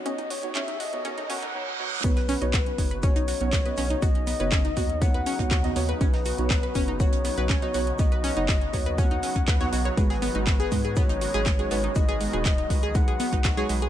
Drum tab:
HH |xxoxxxoxxxox----|xxoxxxoxxxoxxxox|xxoxxxoxxxoxxxox|xxoxxxoxxxoxxxox|
SH |----------------|x-x-x-x-x-x-x-x-|x-x-x-x-x-x-x-x-|x-x-x-x-x-x-x-x-|
CP |----x-----------|----x-------x---|----x-------x---|----x-------x---|
SD |----------------|-o--o-------o---|----o-------oo--|-o--o-------o---|
BD |----------------|o---o-o-o---o---|o---o-o-o--oo---|o---o-o-o---o---|

HH |xxoxxxoxxxoxxxox|xxoxxxoxxxoxxxox|xxoxxxoxxxoxxxox|
SH |x-x-x-x-x-x-x-x-|x-x-x-x-x-x-x-x-|x-x-x-x-x-x-x-x-|
CP |----x-------x---|----x-------x---|----x-------x---|
SD |----o-------oo--|-o--o-------o---|----o-------oo--|
BD |o---o-o-o--oo---|o---o-o-o---o---|o---o-o-o--oo---|